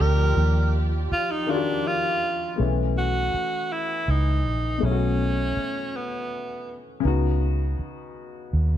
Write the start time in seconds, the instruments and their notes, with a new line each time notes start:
Already playing: string section F3 F4 G4 D5, grand piano D#4 F4 G4 D5
0.00 fingered electric bass D2, tenor saxophone A#4
0.37 fingered electric bass D#2
1.12 tenor saxophone F4, muted fingered electric bass stroke
1.31 tenor saxophone D#4
1.47 grand piano D#3 D4 F4 F#4, tenor saxophone D4
1.57 grand piano G4
1.87 tenor saxophone F4
2.56 fingered electric bass B1, grand piano A3 B3
2.60 grand piano E3 C#4
2.98 tenor saxophone F#4
3.34 muted fingered electric bass stroke
3.72 tenor saxophone E4
4.08 fingered electric bass C#2, tenor saxophone D#4
4.46 fingered electric bass A#1
4.78 grand piano B2 A3
4.83 fingered electric bass B1, grand piano C#4 E4, tenor saxophone C#4
4.91 grand piano F#4
5.57 muted fingered electric bass stroke
5.97 tenor saxophone B3
7.00 grand piano C#3 B3
7.05 fingered electric bass C#2, grand piano D#4 F#4
7.79 muted fingered electric bass stroke
8.53 fingered electric bass D#2